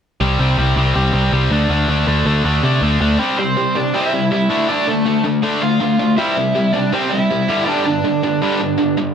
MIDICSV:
0, 0, Header, 1, 4, 480
1, 0, Start_track
1, 0, Key_signature, 0, "major"
1, 0, Tempo, 373367
1, 264, Time_signature, 4, 2, 24, 8
1, 11753, End_track
2, 0, Start_track
2, 0, Title_t, "Overdriven electric guitar"
2, 0, Program_c, 0, 29
2, 4352, Note_on_c, 0, 72, 84
2, 4361, Note_on_c, 0, 60, 74
2, 4799, Note_off_c, 0, 60, 0
2, 4837, Note_off_c, 0, 72, 0
2, 4842, Note_on_c, 0, 74, 91
2, 4848, Note_on_c, 0, 62, 78
2, 5060, Note_off_c, 0, 62, 0
2, 5069, Note_off_c, 0, 74, 0
2, 5074, Note_on_c, 0, 76, 103
2, 5084, Note_on_c, 0, 64, 87
2, 5515, Note_off_c, 0, 76, 0
2, 5521, Note_off_c, 0, 64, 0
2, 5559, Note_on_c, 0, 76, 78
2, 5564, Note_on_c, 0, 64, 69
2, 6001, Note_off_c, 0, 64, 0
2, 6031, Note_on_c, 0, 62, 73
2, 6033, Note_off_c, 0, 76, 0
2, 6039, Note_on_c, 0, 74, 86
2, 6252, Note_off_c, 0, 62, 0
2, 6276, Note_off_c, 0, 74, 0
2, 6278, Note_on_c, 0, 57, 53
2, 6282, Note_on_c, 0, 69, 78
2, 6717, Note_off_c, 0, 69, 0
2, 6718, Note_off_c, 0, 57, 0
2, 7231, Note_on_c, 0, 77, 99
2, 7240, Note_on_c, 0, 65, 73
2, 7902, Note_off_c, 0, 65, 0
2, 7928, Note_off_c, 0, 77, 0
2, 7933, Note_on_c, 0, 76, 93
2, 7960, Note_on_c, 0, 64, 74
2, 8621, Note_off_c, 0, 64, 0
2, 8650, Note_on_c, 0, 74, 87
2, 8679, Note_off_c, 0, 76, 0
2, 8683, Note_on_c, 0, 62, 77
2, 8896, Note_off_c, 0, 62, 0
2, 8898, Note_off_c, 0, 74, 0
2, 8898, Note_on_c, 0, 72, 92
2, 8933, Note_on_c, 0, 60, 69
2, 9124, Note_on_c, 0, 76, 96
2, 9142, Note_off_c, 0, 60, 0
2, 9147, Note_off_c, 0, 72, 0
2, 9164, Note_on_c, 0, 64, 69
2, 9823, Note_off_c, 0, 64, 0
2, 9838, Note_off_c, 0, 76, 0
2, 9844, Note_on_c, 0, 74, 92
2, 9886, Note_on_c, 0, 62, 70
2, 10064, Note_off_c, 0, 74, 0
2, 10080, Note_on_c, 0, 74, 77
2, 10098, Note_off_c, 0, 62, 0
2, 10114, Note_on_c, 0, 62, 69
2, 11479, Note_off_c, 0, 74, 0
2, 11496, Note_off_c, 0, 62, 0
2, 11753, End_track
3, 0, Start_track
3, 0, Title_t, "Distorted electric guitar"
3, 0, Program_c, 1, 30
3, 268, Note_on_c, 1, 48, 93
3, 271, Note_on_c, 1, 55, 94
3, 276, Note_on_c, 1, 60, 113
3, 489, Note_off_c, 1, 48, 0
3, 497, Note_off_c, 1, 55, 0
3, 504, Note_off_c, 1, 60, 0
3, 505, Note_on_c, 1, 48, 80
3, 512, Note_on_c, 1, 55, 80
3, 520, Note_on_c, 1, 60, 89
3, 726, Note_off_c, 1, 48, 0
3, 732, Note_off_c, 1, 55, 0
3, 738, Note_off_c, 1, 60, 0
3, 742, Note_on_c, 1, 48, 86
3, 747, Note_on_c, 1, 55, 82
3, 754, Note_on_c, 1, 60, 83
3, 969, Note_off_c, 1, 48, 0
3, 976, Note_off_c, 1, 55, 0
3, 982, Note_off_c, 1, 60, 0
3, 985, Note_on_c, 1, 48, 76
3, 991, Note_on_c, 1, 55, 83
3, 998, Note_on_c, 1, 60, 91
3, 1212, Note_off_c, 1, 48, 0
3, 1215, Note_off_c, 1, 55, 0
3, 1221, Note_off_c, 1, 60, 0
3, 1227, Note_on_c, 1, 48, 80
3, 1230, Note_on_c, 1, 55, 88
3, 1236, Note_on_c, 1, 60, 93
3, 1442, Note_off_c, 1, 48, 0
3, 1451, Note_off_c, 1, 55, 0
3, 1455, Note_off_c, 1, 60, 0
3, 1458, Note_on_c, 1, 48, 87
3, 1467, Note_on_c, 1, 55, 77
3, 1470, Note_on_c, 1, 60, 82
3, 1689, Note_off_c, 1, 48, 0
3, 1695, Note_off_c, 1, 55, 0
3, 1702, Note_off_c, 1, 60, 0
3, 1704, Note_on_c, 1, 48, 89
3, 1711, Note_on_c, 1, 55, 100
3, 1718, Note_on_c, 1, 60, 94
3, 1930, Note_off_c, 1, 48, 0
3, 1933, Note_off_c, 1, 55, 0
3, 1936, Note_off_c, 1, 60, 0
3, 1947, Note_on_c, 1, 50, 101
3, 1955, Note_on_c, 1, 57, 99
3, 1956, Note_on_c, 1, 62, 106
3, 2167, Note_off_c, 1, 50, 0
3, 2176, Note_off_c, 1, 57, 0
3, 2182, Note_on_c, 1, 50, 103
3, 2183, Note_off_c, 1, 62, 0
3, 2191, Note_on_c, 1, 57, 98
3, 2199, Note_on_c, 1, 62, 108
3, 2404, Note_off_c, 1, 50, 0
3, 2411, Note_off_c, 1, 57, 0
3, 2413, Note_off_c, 1, 62, 0
3, 2420, Note_on_c, 1, 50, 80
3, 2427, Note_on_c, 1, 57, 87
3, 2428, Note_on_c, 1, 62, 87
3, 2643, Note_off_c, 1, 50, 0
3, 2648, Note_off_c, 1, 57, 0
3, 2653, Note_off_c, 1, 62, 0
3, 2658, Note_on_c, 1, 50, 78
3, 2664, Note_on_c, 1, 57, 91
3, 2669, Note_on_c, 1, 62, 90
3, 2892, Note_off_c, 1, 50, 0
3, 2895, Note_off_c, 1, 57, 0
3, 2899, Note_off_c, 1, 62, 0
3, 2907, Note_on_c, 1, 50, 79
3, 2910, Note_on_c, 1, 57, 76
3, 2915, Note_on_c, 1, 62, 98
3, 3128, Note_off_c, 1, 50, 0
3, 3132, Note_off_c, 1, 57, 0
3, 3140, Note_off_c, 1, 62, 0
3, 3144, Note_on_c, 1, 50, 97
3, 3148, Note_on_c, 1, 57, 93
3, 3155, Note_on_c, 1, 62, 96
3, 3370, Note_off_c, 1, 50, 0
3, 3377, Note_off_c, 1, 57, 0
3, 3385, Note_on_c, 1, 50, 83
3, 3386, Note_off_c, 1, 62, 0
3, 3392, Note_on_c, 1, 57, 82
3, 3401, Note_on_c, 1, 62, 91
3, 3619, Note_off_c, 1, 50, 0
3, 3624, Note_off_c, 1, 57, 0
3, 3631, Note_off_c, 1, 62, 0
3, 3634, Note_on_c, 1, 50, 88
3, 3639, Note_on_c, 1, 57, 95
3, 3646, Note_on_c, 1, 62, 90
3, 3852, Note_off_c, 1, 50, 0
3, 3859, Note_off_c, 1, 57, 0
3, 3861, Note_off_c, 1, 62, 0
3, 3867, Note_on_c, 1, 50, 83
3, 3875, Note_on_c, 1, 57, 83
3, 3876, Note_on_c, 1, 62, 100
3, 4091, Note_off_c, 1, 50, 0
3, 4095, Note_off_c, 1, 57, 0
3, 4096, Note_off_c, 1, 62, 0
3, 4103, Note_on_c, 1, 48, 85
3, 4111, Note_on_c, 1, 55, 97
3, 4112, Note_on_c, 1, 60, 105
3, 4329, Note_off_c, 1, 48, 0
3, 4333, Note_off_c, 1, 55, 0
3, 4333, Note_off_c, 1, 60, 0
3, 4351, Note_on_c, 1, 48, 55
3, 4358, Note_on_c, 1, 55, 70
3, 4563, Note_off_c, 1, 48, 0
3, 4567, Note_off_c, 1, 55, 0
3, 4590, Note_on_c, 1, 48, 67
3, 4593, Note_on_c, 1, 55, 82
3, 4803, Note_off_c, 1, 48, 0
3, 4804, Note_off_c, 1, 55, 0
3, 4827, Note_on_c, 1, 48, 75
3, 4835, Note_on_c, 1, 55, 78
3, 5041, Note_off_c, 1, 48, 0
3, 5045, Note_off_c, 1, 55, 0
3, 5067, Note_on_c, 1, 48, 99
3, 5074, Note_on_c, 1, 55, 90
3, 5079, Note_on_c, 1, 60, 98
3, 5291, Note_off_c, 1, 48, 0
3, 5294, Note_off_c, 1, 55, 0
3, 5297, Note_off_c, 1, 60, 0
3, 5313, Note_on_c, 1, 48, 65
3, 5316, Note_on_c, 1, 55, 75
3, 5524, Note_off_c, 1, 48, 0
3, 5526, Note_off_c, 1, 55, 0
3, 5551, Note_on_c, 1, 48, 75
3, 5551, Note_on_c, 1, 55, 78
3, 5763, Note_off_c, 1, 48, 0
3, 5763, Note_off_c, 1, 55, 0
3, 5786, Note_on_c, 1, 50, 97
3, 5788, Note_on_c, 1, 57, 102
3, 5795, Note_on_c, 1, 62, 95
3, 6010, Note_off_c, 1, 50, 0
3, 6011, Note_off_c, 1, 57, 0
3, 6015, Note_off_c, 1, 62, 0
3, 6027, Note_on_c, 1, 50, 89
3, 6029, Note_on_c, 1, 57, 101
3, 6036, Note_on_c, 1, 62, 98
3, 6251, Note_off_c, 1, 50, 0
3, 6251, Note_off_c, 1, 57, 0
3, 6255, Note_off_c, 1, 62, 0
3, 6269, Note_on_c, 1, 50, 65
3, 6277, Note_on_c, 1, 57, 74
3, 6482, Note_off_c, 1, 50, 0
3, 6486, Note_off_c, 1, 57, 0
3, 6504, Note_on_c, 1, 50, 66
3, 6510, Note_on_c, 1, 57, 74
3, 6720, Note_off_c, 1, 50, 0
3, 6723, Note_off_c, 1, 57, 0
3, 6737, Note_on_c, 1, 50, 72
3, 6747, Note_on_c, 1, 57, 79
3, 6956, Note_off_c, 1, 50, 0
3, 6961, Note_off_c, 1, 57, 0
3, 6981, Note_on_c, 1, 50, 83
3, 6987, Note_on_c, 1, 57, 90
3, 6994, Note_on_c, 1, 62, 92
3, 7201, Note_off_c, 1, 50, 0
3, 7211, Note_off_c, 1, 57, 0
3, 7214, Note_off_c, 1, 62, 0
3, 7216, Note_on_c, 1, 50, 65
3, 7227, Note_on_c, 1, 57, 72
3, 7436, Note_off_c, 1, 50, 0
3, 7441, Note_off_c, 1, 57, 0
3, 7460, Note_on_c, 1, 50, 77
3, 7470, Note_on_c, 1, 57, 76
3, 7677, Note_off_c, 1, 50, 0
3, 7682, Note_off_c, 1, 57, 0
3, 7702, Note_on_c, 1, 50, 72
3, 7708, Note_on_c, 1, 57, 81
3, 7918, Note_off_c, 1, 50, 0
3, 7921, Note_off_c, 1, 57, 0
3, 7943, Note_on_c, 1, 48, 104
3, 7951, Note_on_c, 1, 55, 107
3, 7957, Note_on_c, 1, 60, 95
3, 8168, Note_off_c, 1, 48, 0
3, 8169, Note_off_c, 1, 55, 0
3, 8175, Note_off_c, 1, 60, 0
3, 8183, Note_on_c, 1, 48, 65
3, 8185, Note_on_c, 1, 55, 77
3, 8398, Note_off_c, 1, 48, 0
3, 8399, Note_off_c, 1, 55, 0
3, 8424, Note_on_c, 1, 48, 69
3, 8433, Note_on_c, 1, 55, 75
3, 8639, Note_off_c, 1, 48, 0
3, 8644, Note_off_c, 1, 55, 0
3, 8662, Note_on_c, 1, 48, 66
3, 8665, Note_on_c, 1, 55, 83
3, 8878, Note_off_c, 1, 48, 0
3, 8880, Note_off_c, 1, 55, 0
3, 8904, Note_on_c, 1, 48, 74
3, 8906, Note_on_c, 1, 55, 94
3, 8915, Note_on_c, 1, 60, 101
3, 9129, Note_off_c, 1, 48, 0
3, 9130, Note_off_c, 1, 55, 0
3, 9134, Note_off_c, 1, 60, 0
3, 9153, Note_on_c, 1, 48, 66
3, 9160, Note_on_c, 1, 55, 78
3, 9363, Note_off_c, 1, 48, 0
3, 9367, Note_off_c, 1, 55, 0
3, 9392, Note_on_c, 1, 48, 81
3, 9394, Note_on_c, 1, 55, 84
3, 9603, Note_off_c, 1, 48, 0
3, 9604, Note_off_c, 1, 55, 0
3, 9625, Note_on_c, 1, 43, 92
3, 9635, Note_on_c, 1, 50, 95
3, 9636, Note_on_c, 1, 55, 91
3, 9849, Note_off_c, 1, 43, 0
3, 9854, Note_off_c, 1, 50, 0
3, 9855, Note_off_c, 1, 55, 0
3, 9865, Note_on_c, 1, 43, 88
3, 9870, Note_on_c, 1, 50, 106
3, 9874, Note_on_c, 1, 55, 108
3, 10089, Note_off_c, 1, 43, 0
3, 10092, Note_off_c, 1, 50, 0
3, 10093, Note_off_c, 1, 55, 0
3, 10103, Note_on_c, 1, 43, 64
3, 10111, Note_on_c, 1, 50, 79
3, 10318, Note_off_c, 1, 43, 0
3, 10322, Note_off_c, 1, 50, 0
3, 10345, Note_on_c, 1, 43, 65
3, 10349, Note_on_c, 1, 50, 77
3, 10559, Note_off_c, 1, 43, 0
3, 10561, Note_off_c, 1, 50, 0
3, 10584, Note_on_c, 1, 43, 68
3, 10588, Note_on_c, 1, 50, 78
3, 10799, Note_off_c, 1, 43, 0
3, 10801, Note_off_c, 1, 50, 0
3, 10823, Note_on_c, 1, 43, 78
3, 10827, Note_on_c, 1, 50, 96
3, 10830, Note_on_c, 1, 55, 101
3, 11043, Note_off_c, 1, 43, 0
3, 11050, Note_off_c, 1, 50, 0
3, 11051, Note_off_c, 1, 55, 0
3, 11059, Note_on_c, 1, 43, 69
3, 11065, Note_on_c, 1, 50, 76
3, 11270, Note_off_c, 1, 43, 0
3, 11275, Note_off_c, 1, 50, 0
3, 11285, Note_on_c, 1, 43, 75
3, 11291, Note_on_c, 1, 50, 79
3, 11509, Note_off_c, 1, 43, 0
3, 11512, Note_off_c, 1, 50, 0
3, 11536, Note_on_c, 1, 43, 66
3, 11539, Note_on_c, 1, 50, 77
3, 11753, Note_off_c, 1, 43, 0
3, 11753, Note_off_c, 1, 50, 0
3, 11753, End_track
4, 0, Start_track
4, 0, Title_t, "Picked electric bass"
4, 0, Program_c, 2, 34
4, 266, Note_on_c, 2, 36, 86
4, 468, Note_off_c, 2, 36, 0
4, 507, Note_on_c, 2, 36, 85
4, 708, Note_off_c, 2, 36, 0
4, 746, Note_on_c, 2, 36, 84
4, 948, Note_off_c, 2, 36, 0
4, 979, Note_on_c, 2, 36, 83
4, 1183, Note_off_c, 2, 36, 0
4, 1229, Note_on_c, 2, 36, 87
4, 1429, Note_off_c, 2, 36, 0
4, 1459, Note_on_c, 2, 36, 85
4, 1663, Note_off_c, 2, 36, 0
4, 1700, Note_on_c, 2, 36, 86
4, 1904, Note_off_c, 2, 36, 0
4, 1933, Note_on_c, 2, 38, 84
4, 2140, Note_off_c, 2, 38, 0
4, 2175, Note_on_c, 2, 38, 86
4, 2381, Note_off_c, 2, 38, 0
4, 2421, Note_on_c, 2, 38, 79
4, 2624, Note_off_c, 2, 38, 0
4, 2664, Note_on_c, 2, 38, 95
4, 2866, Note_off_c, 2, 38, 0
4, 2899, Note_on_c, 2, 38, 84
4, 3103, Note_off_c, 2, 38, 0
4, 3142, Note_on_c, 2, 38, 90
4, 3345, Note_off_c, 2, 38, 0
4, 3386, Note_on_c, 2, 48, 91
4, 3587, Note_off_c, 2, 48, 0
4, 3620, Note_on_c, 2, 38, 90
4, 3824, Note_off_c, 2, 38, 0
4, 3861, Note_on_c, 2, 38, 86
4, 4064, Note_off_c, 2, 38, 0
4, 11753, End_track
0, 0, End_of_file